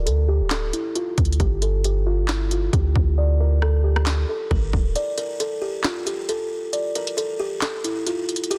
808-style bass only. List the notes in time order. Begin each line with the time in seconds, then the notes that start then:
0.07 D2
0.41 D1
1.18 D2
1.40 G1
2.73 D2
2.96 D2
4.51 G1
4.73 D1